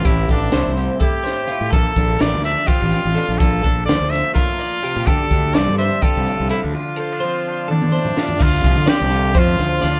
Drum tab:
CC |--------------|--------------|--------------|--------------|
HH |x-x-x-x-x-x-x-|x-x-x-x-x-x-x-|x-x-x-x-x-x-x-|x-x-x-x-x-x-x-|
SD |--o-o-----o---|----o---------|----o-o-o-----|----o---------|
T1 |--------------|--------------|--------------|--------------|
T2 |--------------|--------------|--------------|--------------|
FT |--------------|--------------|--------------|--------------|
BD |o-o-----o-----|o-o-----o-----|o-o-----o-----|o-o-----o-----|

CC |--------------|x-------------|
HH |--------------|--x-x-x-x-x-x-|
SD |------------o-|----o-----o-o-|
T1 |--------oo----|--------------|
T2 |-----------o--|--------------|
FT |-------------o|--------------|
BD |--------------|o-o-----o-----|